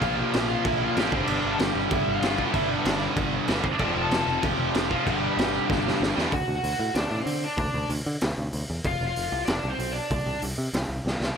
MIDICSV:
0, 0, Header, 1, 5, 480
1, 0, Start_track
1, 0, Tempo, 315623
1, 26, Time_signature, 4, 2, 24, 8
1, 17293, End_track
2, 0, Start_track
2, 0, Title_t, "Lead electric guitar"
2, 0, Program_c, 0, 29
2, 27, Note_on_c, 0, 65, 66
2, 28, Note_on_c, 0, 77, 89
2, 243, Note_on_c, 0, 67, 81
2, 247, Note_off_c, 0, 77, 0
2, 247, Note_on_c, 0, 79, 96
2, 252, Note_off_c, 0, 65, 0
2, 703, Note_off_c, 0, 67, 0
2, 729, Note_off_c, 0, 79, 0
2, 734, Note_on_c, 0, 65, 65
2, 735, Note_on_c, 0, 77, 78
2, 965, Note_off_c, 0, 65, 0
2, 981, Note_off_c, 0, 77, 0
2, 987, Note_on_c, 0, 76, 100
2, 997, Note_on_c, 0, 64, 61
2, 1212, Note_off_c, 0, 64, 0
2, 1212, Note_off_c, 0, 76, 0
2, 1253, Note_on_c, 0, 65, 76
2, 1266, Note_on_c, 0, 77, 84
2, 1466, Note_off_c, 0, 65, 0
2, 1485, Note_off_c, 0, 77, 0
2, 1491, Note_on_c, 0, 79, 117
2, 1503, Note_on_c, 0, 67, 75
2, 1704, Note_off_c, 0, 79, 0
2, 1710, Note_off_c, 0, 67, 0
2, 1714, Note_on_c, 0, 72, 78
2, 1730, Note_on_c, 0, 60, 62
2, 1832, Note_off_c, 0, 60, 0
2, 1849, Note_on_c, 0, 62, 60
2, 1859, Note_off_c, 0, 72, 0
2, 1859, Note_on_c, 0, 74, 79
2, 1948, Note_off_c, 0, 62, 0
2, 1949, Note_off_c, 0, 74, 0
2, 1965, Note_on_c, 0, 62, 83
2, 1973, Note_on_c, 0, 74, 87
2, 2294, Note_off_c, 0, 62, 0
2, 2311, Note_on_c, 0, 81, 88
2, 2322, Note_on_c, 0, 69, 81
2, 2329, Note_off_c, 0, 74, 0
2, 2408, Note_on_c, 0, 79, 108
2, 2416, Note_off_c, 0, 69, 0
2, 2422, Note_off_c, 0, 81, 0
2, 2422, Note_on_c, 0, 67, 77
2, 2865, Note_off_c, 0, 79, 0
2, 2872, Note_off_c, 0, 67, 0
2, 2935, Note_on_c, 0, 76, 102
2, 2937, Note_on_c, 0, 64, 64
2, 3253, Note_off_c, 0, 76, 0
2, 3256, Note_off_c, 0, 64, 0
2, 3259, Note_on_c, 0, 77, 95
2, 3270, Note_on_c, 0, 65, 72
2, 3711, Note_off_c, 0, 77, 0
2, 3716, Note_off_c, 0, 65, 0
2, 3739, Note_on_c, 0, 79, 84
2, 3753, Note_on_c, 0, 67, 69
2, 3825, Note_off_c, 0, 79, 0
2, 3831, Note_on_c, 0, 76, 102
2, 3842, Note_on_c, 0, 64, 63
2, 3863, Note_off_c, 0, 67, 0
2, 4076, Note_off_c, 0, 64, 0
2, 4123, Note_off_c, 0, 76, 0
2, 4123, Note_on_c, 0, 74, 87
2, 4134, Note_on_c, 0, 62, 61
2, 4569, Note_off_c, 0, 62, 0
2, 4596, Note_off_c, 0, 74, 0
2, 5531, Note_on_c, 0, 72, 80
2, 5553, Note_on_c, 0, 60, 68
2, 5636, Note_off_c, 0, 72, 0
2, 5636, Note_on_c, 0, 74, 96
2, 5647, Note_off_c, 0, 60, 0
2, 5653, Note_on_c, 0, 62, 73
2, 5747, Note_off_c, 0, 74, 0
2, 5762, Note_off_c, 0, 62, 0
2, 5765, Note_on_c, 0, 74, 106
2, 5780, Note_on_c, 0, 62, 75
2, 5968, Note_on_c, 0, 79, 83
2, 6012, Note_off_c, 0, 74, 0
2, 6021, Note_off_c, 0, 62, 0
2, 6103, Note_on_c, 0, 81, 110
2, 6111, Note_off_c, 0, 79, 0
2, 6117, Note_on_c, 0, 69, 84
2, 6689, Note_off_c, 0, 69, 0
2, 6711, Note_on_c, 0, 79, 100
2, 6738, Note_on_c, 0, 67, 73
2, 6744, Note_off_c, 0, 81, 0
2, 7411, Note_off_c, 0, 67, 0
2, 7447, Note_off_c, 0, 79, 0
2, 7453, Note_on_c, 0, 77, 91
2, 7462, Note_on_c, 0, 65, 75
2, 7686, Note_off_c, 0, 65, 0
2, 7707, Note_off_c, 0, 77, 0
2, 7710, Note_on_c, 0, 67, 67
2, 7723, Note_on_c, 0, 79, 94
2, 8697, Note_off_c, 0, 79, 0
2, 8697, Note_on_c, 0, 77, 94
2, 9085, Note_off_c, 0, 67, 0
2, 9092, Note_off_c, 0, 77, 0
2, 9609, Note_on_c, 0, 78, 99
2, 9623, Note_on_c, 0, 66, 85
2, 9951, Note_off_c, 0, 78, 0
2, 9958, Note_off_c, 0, 66, 0
2, 9967, Note_on_c, 0, 78, 99
2, 9979, Note_on_c, 0, 66, 71
2, 10533, Note_off_c, 0, 78, 0
2, 10539, Note_off_c, 0, 66, 0
2, 10565, Note_on_c, 0, 62, 65
2, 10578, Note_on_c, 0, 74, 96
2, 10909, Note_off_c, 0, 62, 0
2, 10952, Note_off_c, 0, 74, 0
2, 10952, Note_on_c, 0, 60, 59
2, 10965, Note_on_c, 0, 72, 84
2, 11284, Note_off_c, 0, 60, 0
2, 11318, Note_on_c, 0, 62, 67
2, 11322, Note_off_c, 0, 72, 0
2, 11328, Note_on_c, 0, 74, 81
2, 11982, Note_off_c, 0, 62, 0
2, 11987, Note_off_c, 0, 74, 0
2, 13471, Note_on_c, 0, 77, 105
2, 13485, Note_on_c, 0, 65, 74
2, 13773, Note_off_c, 0, 77, 0
2, 13792, Note_on_c, 0, 77, 93
2, 13798, Note_off_c, 0, 65, 0
2, 13817, Note_on_c, 0, 65, 77
2, 14368, Note_off_c, 0, 77, 0
2, 14374, Note_on_c, 0, 74, 101
2, 14379, Note_off_c, 0, 65, 0
2, 14437, Note_on_c, 0, 62, 76
2, 14733, Note_off_c, 0, 74, 0
2, 14733, Note_on_c, 0, 72, 86
2, 14767, Note_off_c, 0, 62, 0
2, 14793, Note_on_c, 0, 60, 66
2, 15088, Note_on_c, 0, 74, 79
2, 15093, Note_off_c, 0, 72, 0
2, 15125, Note_off_c, 0, 60, 0
2, 15137, Note_on_c, 0, 62, 60
2, 15785, Note_off_c, 0, 74, 0
2, 15811, Note_off_c, 0, 62, 0
2, 17293, End_track
3, 0, Start_track
3, 0, Title_t, "Overdriven electric guitar"
3, 0, Program_c, 1, 29
3, 0, Note_on_c, 1, 46, 94
3, 0, Note_on_c, 1, 53, 79
3, 0, Note_on_c, 1, 58, 106
3, 1446, Note_off_c, 1, 46, 0
3, 1456, Note_off_c, 1, 53, 0
3, 1466, Note_off_c, 1, 58, 0
3, 1474, Note_on_c, 1, 46, 71
3, 1495, Note_on_c, 1, 53, 77
3, 1521, Note_on_c, 1, 58, 74
3, 1697, Note_off_c, 1, 46, 0
3, 1708, Note_off_c, 1, 53, 0
3, 1713, Note_on_c, 1, 43, 76
3, 1721, Note_off_c, 1, 58, 0
3, 1732, Note_on_c, 1, 50, 83
3, 1740, Note_on_c, 1, 55, 100
3, 3369, Note_off_c, 1, 43, 0
3, 3387, Note_off_c, 1, 50, 0
3, 3387, Note_on_c, 1, 43, 74
3, 3391, Note_off_c, 1, 55, 0
3, 3402, Note_on_c, 1, 50, 81
3, 3426, Note_on_c, 1, 55, 86
3, 3594, Note_off_c, 1, 43, 0
3, 3612, Note_off_c, 1, 50, 0
3, 3613, Note_on_c, 1, 43, 91
3, 3631, Note_on_c, 1, 50, 108
3, 3634, Note_off_c, 1, 55, 0
3, 3651, Note_on_c, 1, 55, 107
3, 5280, Note_off_c, 1, 43, 0
3, 5295, Note_off_c, 1, 50, 0
3, 5298, Note_on_c, 1, 43, 78
3, 5306, Note_off_c, 1, 55, 0
3, 5318, Note_on_c, 1, 50, 87
3, 5329, Note_on_c, 1, 55, 76
3, 5529, Note_off_c, 1, 43, 0
3, 5539, Note_off_c, 1, 50, 0
3, 5545, Note_off_c, 1, 55, 0
3, 5793, Note_on_c, 1, 41, 89
3, 5813, Note_on_c, 1, 48, 89
3, 5839, Note_on_c, 1, 53, 96
3, 7444, Note_off_c, 1, 53, 0
3, 7454, Note_off_c, 1, 41, 0
3, 7457, Note_off_c, 1, 48, 0
3, 7462, Note_on_c, 1, 53, 83
3, 7475, Note_on_c, 1, 48, 83
3, 7501, Note_on_c, 1, 41, 62
3, 7689, Note_off_c, 1, 53, 0
3, 7691, Note_off_c, 1, 41, 0
3, 7696, Note_off_c, 1, 48, 0
3, 7697, Note_on_c, 1, 43, 89
3, 7718, Note_on_c, 1, 50, 98
3, 7738, Note_on_c, 1, 55, 98
3, 9357, Note_off_c, 1, 55, 0
3, 9365, Note_off_c, 1, 43, 0
3, 9375, Note_off_c, 1, 50, 0
3, 9375, Note_on_c, 1, 55, 91
3, 9395, Note_on_c, 1, 50, 73
3, 9412, Note_on_c, 1, 43, 66
3, 9605, Note_off_c, 1, 55, 0
3, 9615, Note_off_c, 1, 50, 0
3, 9623, Note_off_c, 1, 43, 0
3, 17293, End_track
4, 0, Start_track
4, 0, Title_t, "Picked electric bass"
4, 0, Program_c, 2, 34
4, 24, Note_on_c, 2, 34, 102
4, 339, Note_off_c, 2, 34, 0
4, 527, Note_on_c, 2, 34, 91
4, 835, Note_off_c, 2, 34, 0
4, 989, Note_on_c, 2, 34, 103
4, 1303, Note_off_c, 2, 34, 0
4, 1473, Note_on_c, 2, 33, 95
4, 1628, Note_off_c, 2, 33, 0
4, 1695, Note_on_c, 2, 31, 94
4, 1857, Note_off_c, 2, 31, 0
4, 1953, Note_on_c, 2, 31, 89
4, 2109, Note_off_c, 2, 31, 0
4, 2204, Note_on_c, 2, 31, 104
4, 2357, Note_off_c, 2, 31, 0
4, 2426, Note_on_c, 2, 31, 96
4, 2584, Note_off_c, 2, 31, 0
4, 2663, Note_on_c, 2, 31, 94
4, 2822, Note_off_c, 2, 31, 0
4, 2905, Note_on_c, 2, 31, 101
4, 3064, Note_off_c, 2, 31, 0
4, 3149, Note_on_c, 2, 31, 91
4, 3307, Note_off_c, 2, 31, 0
4, 3381, Note_on_c, 2, 31, 90
4, 3698, Note_off_c, 2, 31, 0
4, 3859, Note_on_c, 2, 31, 101
4, 4177, Note_off_c, 2, 31, 0
4, 4347, Note_on_c, 2, 31, 101
4, 4662, Note_off_c, 2, 31, 0
4, 4810, Note_on_c, 2, 31, 99
4, 5130, Note_off_c, 2, 31, 0
4, 5305, Note_on_c, 2, 31, 94
4, 5463, Note_off_c, 2, 31, 0
4, 5530, Note_on_c, 2, 31, 95
4, 5693, Note_off_c, 2, 31, 0
4, 5769, Note_on_c, 2, 29, 110
4, 5932, Note_off_c, 2, 29, 0
4, 6017, Note_on_c, 2, 29, 88
4, 6177, Note_off_c, 2, 29, 0
4, 6234, Note_on_c, 2, 29, 99
4, 6402, Note_off_c, 2, 29, 0
4, 6489, Note_on_c, 2, 29, 97
4, 6652, Note_off_c, 2, 29, 0
4, 6739, Note_on_c, 2, 29, 101
4, 6899, Note_off_c, 2, 29, 0
4, 6966, Note_on_c, 2, 29, 100
4, 7129, Note_off_c, 2, 29, 0
4, 7210, Note_on_c, 2, 29, 82
4, 7529, Note_off_c, 2, 29, 0
4, 7703, Note_on_c, 2, 31, 97
4, 8017, Note_off_c, 2, 31, 0
4, 8171, Note_on_c, 2, 31, 98
4, 8489, Note_off_c, 2, 31, 0
4, 8663, Note_on_c, 2, 31, 104
4, 8977, Note_off_c, 2, 31, 0
4, 9130, Note_on_c, 2, 31, 81
4, 9291, Note_off_c, 2, 31, 0
4, 9390, Note_on_c, 2, 40, 84
4, 9545, Note_off_c, 2, 40, 0
4, 9615, Note_on_c, 2, 38, 86
4, 9761, Note_off_c, 2, 38, 0
4, 9854, Note_on_c, 2, 38, 87
4, 10001, Note_off_c, 2, 38, 0
4, 10091, Note_on_c, 2, 38, 84
4, 10239, Note_off_c, 2, 38, 0
4, 10333, Note_on_c, 2, 45, 93
4, 10480, Note_off_c, 2, 45, 0
4, 10566, Note_on_c, 2, 38, 97
4, 10715, Note_off_c, 2, 38, 0
4, 10807, Note_on_c, 2, 45, 85
4, 10956, Note_off_c, 2, 45, 0
4, 11040, Note_on_c, 2, 50, 83
4, 11336, Note_off_c, 2, 50, 0
4, 11517, Note_on_c, 2, 38, 98
4, 11669, Note_off_c, 2, 38, 0
4, 11774, Note_on_c, 2, 38, 103
4, 11922, Note_off_c, 2, 38, 0
4, 12007, Note_on_c, 2, 38, 97
4, 12156, Note_off_c, 2, 38, 0
4, 12263, Note_on_c, 2, 50, 97
4, 12408, Note_off_c, 2, 50, 0
4, 12506, Note_on_c, 2, 38, 98
4, 12650, Note_off_c, 2, 38, 0
4, 12743, Note_on_c, 2, 38, 90
4, 12888, Note_off_c, 2, 38, 0
4, 12974, Note_on_c, 2, 38, 87
4, 13122, Note_off_c, 2, 38, 0
4, 13226, Note_on_c, 2, 40, 90
4, 13370, Note_off_c, 2, 40, 0
4, 13456, Note_on_c, 2, 29, 90
4, 13603, Note_off_c, 2, 29, 0
4, 13702, Note_on_c, 2, 29, 97
4, 13848, Note_off_c, 2, 29, 0
4, 13948, Note_on_c, 2, 29, 93
4, 14092, Note_off_c, 2, 29, 0
4, 14176, Note_on_c, 2, 36, 100
4, 14323, Note_off_c, 2, 36, 0
4, 14416, Note_on_c, 2, 29, 103
4, 14563, Note_off_c, 2, 29, 0
4, 14658, Note_on_c, 2, 36, 87
4, 14805, Note_off_c, 2, 36, 0
4, 14887, Note_on_c, 2, 35, 90
4, 15181, Note_off_c, 2, 35, 0
4, 15366, Note_on_c, 2, 36, 95
4, 15516, Note_off_c, 2, 36, 0
4, 15608, Note_on_c, 2, 36, 102
4, 15757, Note_off_c, 2, 36, 0
4, 15855, Note_on_c, 2, 36, 91
4, 16002, Note_off_c, 2, 36, 0
4, 16090, Note_on_c, 2, 48, 88
4, 16239, Note_off_c, 2, 48, 0
4, 16324, Note_on_c, 2, 36, 92
4, 16474, Note_off_c, 2, 36, 0
4, 16554, Note_on_c, 2, 36, 83
4, 16707, Note_off_c, 2, 36, 0
4, 16799, Note_on_c, 2, 36, 82
4, 16951, Note_off_c, 2, 36, 0
4, 17035, Note_on_c, 2, 36, 88
4, 17188, Note_off_c, 2, 36, 0
4, 17293, End_track
5, 0, Start_track
5, 0, Title_t, "Drums"
5, 29, Note_on_c, 9, 36, 102
5, 35, Note_on_c, 9, 49, 65
5, 181, Note_off_c, 9, 36, 0
5, 187, Note_off_c, 9, 49, 0
5, 510, Note_on_c, 9, 49, 67
5, 525, Note_on_c, 9, 38, 117
5, 662, Note_off_c, 9, 49, 0
5, 678, Note_off_c, 9, 38, 0
5, 984, Note_on_c, 9, 49, 71
5, 989, Note_on_c, 9, 36, 119
5, 1136, Note_off_c, 9, 49, 0
5, 1141, Note_off_c, 9, 36, 0
5, 1468, Note_on_c, 9, 49, 62
5, 1483, Note_on_c, 9, 38, 127
5, 1620, Note_off_c, 9, 49, 0
5, 1635, Note_off_c, 9, 38, 0
5, 1707, Note_on_c, 9, 36, 112
5, 1859, Note_off_c, 9, 36, 0
5, 1938, Note_on_c, 9, 49, 73
5, 2090, Note_off_c, 9, 49, 0
5, 2422, Note_on_c, 9, 49, 63
5, 2437, Note_on_c, 9, 38, 123
5, 2574, Note_off_c, 9, 49, 0
5, 2589, Note_off_c, 9, 38, 0
5, 2899, Note_on_c, 9, 49, 68
5, 2906, Note_on_c, 9, 36, 117
5, 3051, Note_off_c, 9, 49, 0
5, 3058, Note_off_c, 9, 36, 0
5, 3382, Note_on_c, 9, 49, 73
5, 3397, Note_on_c, 9, 38, 122
5, 3534, Note_off_c, 9, 49, 0
5, 3549, Note_off_c, 9, 38, 0
5, 3626, Note_on_c, 9, 36, 97
5, 3778, Note_off_c, 9, 36, 0
5, 3858, Note_on_c, 9, 49, 67
5, 3862, Note_on_c, 9, 36, 97
5, 4010, Note_off_c, 9, 49, 0
5, 4014, Note_off_c, 9, 36, 0
5, 4337, Note_on_c, 9, 49, 78
5, 4353, Note_on_c, 9, 38, 112
5, 4490, Note_off_c, 9, 49, 0
5, 4505, Note_off_c, 9, 38, 0
5, 4816, Note_on_c, 9, 36, 118
5, 4818, Note_on_c, 9, 49, 71
5, 4968, Note_off_c, 9, 36, 0
5, 4970, Note_off_c, 9, 49, 0
5, 5287, Note_on_c, 9, 49, 69
5, 5302, Note_on_c, 9, 38, 112
5, 5439, Note_off_c, 9, 49, 0
5, 5454, Note_off_c, 9, 38, 0
5, 5533, Note_on_c, 9, 36, 92
5, 5685, Note_off_c, 9, 36, 0
5, 5764, Note_on_c, 9, 49, 63
5, 5773, Note_on_c, 9, 36, 101
5, 5916, Note_off_c, 9, 49, 0
5, 5925, Note_off_c, 9, 36, 0
5, 6254, Note_on_c, 9, 49, 58
5, 6270, Note_on_c, 9, 38, 117
5, 6407, Note_off_c, 9, 49, 0
5, 6422, Note_off_c, 9, 38, 0
5, 6734, Note_on_c, 9, 49, 73
5, 6740, Note_on_c, 9, 36, 126
5, 6886, Note_off_c, 9, 49, 0
5, 6892, Note_off_c, 9, 36, 0
5, 7216, Note_on_c, 9, 49, 67
5, 7231, Note_on_c, 9, 38, 125
5, 7368, Note_off_c, 9, 49, 0
5, 7383, Note_off_c, 9, 38, 0
5, 7465, Note_on_c, 9, 36, 93
5, 7617, Note_off_c, 9, 36, 0
5, 7707, Note_on_c, 9, 36, 97
5, 7712, Note_on_c, 9, 49, 68
5, 7859, Note_off_c, 9, 36, 0
5, 7864, Note_off_c, 9, 49, 0
5, 8189, Note_on_c, 9, 49, 63
5, 8205, Note_on_c, 9, 38, 116
5, 8341, Note_off_c, 9, 49, 0
5, 8357, Note_off_c, 9, 38, 0
5, 8666, Note_on_c, 9, 36, 107
5, 8684, Note_on_c, 9, 38, 73
5, 8818, Note_off_c, 9, 36, 0
5, 8836, Note_off_c, 9, 38, 0
5, 8930, Note_on_c, 9, 38, 74
5, 9082, Note_off_c, 9, 38, 0
5, 9165, Note_on_c, 9, 38, 104
5, 9317, Note_off_c, 9, 38, 0
5, 9398, Note_on_c, 9, 38, 93
5, 9550, Note_off_c, 9, 38, 0
5, 9616, Note_on_c, 9, 36, 113
5, 9620, Note_on_c, 9, 46, 52
5, 9768, Note_off_c, 9, 36, 0
5, 9772, Note_off_c, 9, 46, 0
5, 10092, Note_on_c, 9, 46, 57
5, 10244, Note_off_c, 9, 46, 0
5, 10569, Note_on_c, 9, 46, 62
5, 10584, Note_on_c, 9, 38, 109
5, 10721, Note_off_c, 9, 46, 0
5, 10736, Note_off_c, 9, 38, 0
5, 11048, Note_on_c, 9, 46, 67
5, 11200, Note_off_c, 9, 46, 0
5, 11527, Note_on_c, 9, 36, 113
5, 11528, Note_on_c, 9, 46, 62
5, 11679, Note_off_c, 9, 36, 0
5, 11681, Note_off_c, 9, 46, 0
5, 12010, Note_on_c, 9, 46, 63
5, 12162, Note_off_c, 9, 46, 0
5, 12482, Note_on_c, 9, 46, 67
5, 12497, Note_on_c, 9, 38, 121
5, 12634, Note_off_c, 9, 46, 0
5, 12649, Note_off_c, 9, 38, 0
5, 12968, Note_on_c, 9, 46, 60
5, 13120, Note_off_c, 9, 46, 0
5, 13444, Note_on_c, 9, 46, 61
5, 13452, Note_on_c, 9, 36, 107
5, 13596, Note_off_c, 9, 46, 0
5, 13604, Note_off_c, 9, 36, 0
5, 13931, Note_on_c, 9, 46, 56
5, 14083, Note_off_c, 9, 46, 0
5, 14402, Note_on_c, 9, 46, 58
5, 14417, Note_on_c, 9, 38, 122
5, 14554, Note_off_c, 9, 46, 0
5, 14569, Note_off_c, 9, 38, 0
5, 14894, Note_on_c, 9, 46, 66
5, 15046, Note_off_c, 9, 46, 0
5, 15368, Note_on_c, 9, 46, 67
5, 15373, Note_on_c, 9, 36, 103
5, 15520, Note_off_c, 9, 46, 0
5, 15525, Note_off_c, 9, 36, 0
5, 15844, Note_on_c, 9, 46, 65
5, 15996, Note_off_c, 9, 46, 0
5, 16325, Note_on_c, 9, 46, 66
5, 16340, Note_on_c, 9, 38, 102
5, 16477, Note_off_c, 9, 46, 0
5, 16492, Note_off_c, 9, 38, 0
5, 16832, Note_on_c, 9, 38, 70
5, 16984, Note_off_c, 9, 38, 0
5, 17071, Note_on_c, 9, 38, 78
5, 17223, Note_off_c, 9, 38, 0
5, 17293, End_track
0, 0, End_of_file